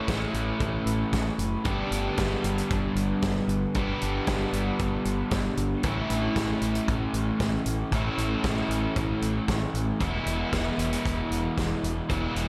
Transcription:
Already playing: A2 E3 A3 C#4 E4
0.08 A1, kick, snare, closed hi-hat
0.34 A1, closed hi-hat
0.60 A1, kick, closed hi-hat
0.86 A1, closed hi-hat
1.12 A1, kick, snare, closed hi-hat
1.38 F#1, closed hi-hat
1.65 G1 G2 D3 G3 B3 D4 G4, kick, closed hi-hat
1.91 G1, closed hi-hat
2.17 G1, kick, snare, closed hi-hat
2.44 G1, closed hi-hat
2.58 closed hi-hat
2.70 G1, kick, closed hi-hat
2.95 G1, closed hi-hat
3.22 G1, kick, snare, closed hi-hat
3.48 G1, closed hi-hat
3.74 G1 G2 D3 G3 B3 D4 G4, kick, closed hi-hat
4.02 G1, closed hi-hat
4.27 G1, kick, snare, closed hi-hat
4.53 G1, closed hi-hat
4.79 G1, kick, closed hi-hat
5.05 G1, closed hi-hat
5.31 G1, kick, snare, closed hi-hat
5.57 G1, closed hi-hat
5.83 A1 A2 E3 A3 C#4 E4, kick, closed hi-hat
6.10 A1, closed hi-hat
6.36 A1, kick, snare, closed hi-hat
6.62 A1, closed hi-hat
6.75 closed hi-hat
6.87 A1, kick, closed hi-hat
7.13 A1, closed hi-hat
7.40 A1, kick, snare, closed hi-hat
7.66 A1, closed hi-hat
7.91 A1 A2 E3 A3 C#4 E4, kick, closed hi-hat
8.18 A1, closed hi-hat
8.43 A1, kick, snare, closed hi-hat
8.69 A1, closed hi-hat
8.96 A1, kick, closed hi-hat
9.22 A1, closed hi-hat
9.48 A1, kick, snare, closed hi-hat
9.74 A1, closed hi-hat
10.00 E1 E2 B2 E3 G#3 B3 E4, kick, closed hi-hat
10.26 E1, closed hi-hat
10.52 E1, kick, snare, closed hi-hat
10.78 E1, closed hi-hat
10.93 closed hi-hat
11.05 E1, kick, closed hi-hat
11.30 E1, closed hi-hat
11.57 E1, kick, snare, closed hi-hat
11.83 E1, closed hi-hat
12.09 E1 E2 B2 E3 G#3 B3 E4, kick, closed hi-hat
12.35 E1, closed hi-hat

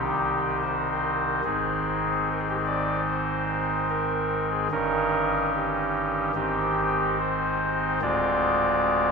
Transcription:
Already playing: C2 C3 D#3 C4 D#4 G4
0.62 C5
1.44 G#1 G#2 D#3 C4 D#4 G#4
2.31 A#4
2.40 G#4
2.49 G4
2.58 G#4
2.66 D5
3.08 C5
3.89 A#4
4.50 G#4
4.71 G1 G2 D#3 C#4 D#4 A#4
5.53 G4
6.34 G#1 G#2 D#3 C4 D#4 G4
7.20 C5
8.01 D1 D2 G#3 C4 F4 D5

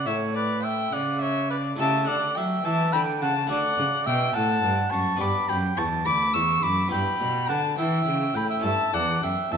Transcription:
Already playing: F#4 A4
0.06 A2 C#5 E5
0.35 B4 D5
0.63 E5 G5
0.93 C#3 D5 F#5
1.21 C#5 E5
1.50 B4 D5
1.75 C#3 A3 E4 G4 E5 A5
1.79 C#3
2.07 D3 D5 F#5
2.35 F#3 E5 G5
2.65 E3 E5 A5
2.93 D3 G5 B5
3.21 C#3 F#5 A5
3.47 D3 A3 D4 F#4 D5 F#5
3.51 D3
3.78 C#3
4.06 B2 E5 G5
4.35 A2 F#5 A5
4.63 G2
4.91 F#2 A5 C#6
5.16 B3 D4 G4
5.20 G2 B5 D6
5.49 F#2 G5 B5
5.77 E2 A5 C#6
6.05 D2 B5 D6
6.34 E2 C#6 E6
6.63 F#2 B5 D6
6.88 B3 E4 G4 G5 B5
6.92 G2
7.20 B2
7.48 D3 F#5 A5
7.78 E3 E5 G5
8.06 C#3
8.34 A2 G5 B5
8.50 E5 G5
8.60 C#4 E4 A4
8.64 G2 E5 A5
8.93 E2 D5 F#5
9.22 F#2 E5 G5
9.51 E2 E5 A5

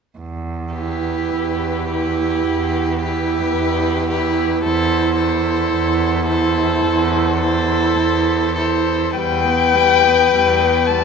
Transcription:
0.19 E2
0.75 E4 G4 B4
1.34 E2
1.90 E4 G4 B4
2.46 E2
3.01 E4 G4 B4
3.55 E2
4.09 E4 G4 B4
4.64 E2 E4 A4 C5
5.17 E4 A4 C5
5.72 E2
6.27 E4 A4 C5
6.84 E2
7.39 E4 A4 C5
7.97 E2
8.55 E4 A4 C5
9.16 E2 G3 B4 G5
9.45 B3
9.73 G3
10.04 B3
10.31 E2 G3
10.62 B3
10.86 G3 A5

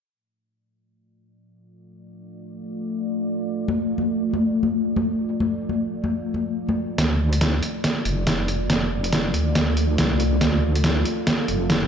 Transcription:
0.13 A3 F4 D5
3.68 high conga
3.98 high conga
4.33 high conga
4.63 high conga
4.96 high conga
5.40 high conga
5.69 high conga
6.04 high conga
6.34 high conga
6.69 high conga
6.98 D2 A3 F4 D5, kick, snare, closed hi-hat
7.33 closed hi-hat
7.41 kick, snare, closed hi-hat
7.63 closed hi-hat
7.84 kick, snare, closed hi-hat
8.05 F1, closed hi-hat
8.27 kick, snare, closed hi-hat
8.48 closed hi-hat
8.70 kick, snare, closed hi-hat
9.04 closed hi-hat
9.13 kick, snare, closed hi-hat
9.34 D2, closed hi-hat
9.55 kick, snare, closed hi-hat
9.77 closed hi-hat
9.98 C2, kick, snare, closed hi-hat
10.20 closed hi-hat
10.41 D2 A4, kick, snare, closed hi-hat
10.75 closed hi-hat
10.84 kick, snare, closed hi-hat
11.05 closed hi-hat
11.27 kick, snare, closed hi-hat
11.48 F1, closed hi-hat
11.70 kick, snare, closed hi-hat

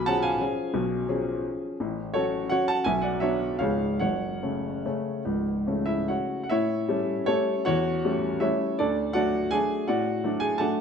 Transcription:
Already playing: B1 B2 G#5 B5
0.06 F3 C#4 G#4 F#5 A5
0.22 F5 G#5
0.41 F3 C#4 G#4
0.74 B1 B2
1.08 F3 C#4 G#4
1.80 A1 A2
2.14 F#3 C#4 F#4 A4 C#5
2.49 F#3 C#4 F#4 C#5 F#5
2.68 F#5 A5
2.84 B1 B2 E5 G#5
3.02 D5 F#5
3.20 F#3 B3 D4 C#5 E5
3.59 C#1 C#2 C#3 G#3 C#4 C#5 F5
3.99 F#1 F#2 C#5 F#5
4.43 C#3 A3 C#4
4.85 C#3 A3 C#4
5.25 C#1 C#2
5.67 C#3 A3 C#4
5.86 E4 E5
6.08 F#4 C#5 F#5
6.43 F#5
6.49 A2 E4 C#5 E5
6.89 G3 A3 C#4
7.26 G3 A3 C#4 A4 C#5
7.65 E2 F#4 C#5 F#5
8.05 G3 A3 C#4
8.40 G3 A3 C#4 E4 C#5 E5
8.79 D2 D4 A4 D5
9.13 F#3 A3 D4 F#4 D5 F#5
9.51 F#3 A3 D4 G#4 G#5
9.88 A2 F#4 D5 F#5
10.24 F#3 A3 D4
10.40 G#4 G#5
10.58 F#3 A3 D4 A4 F#5 A5

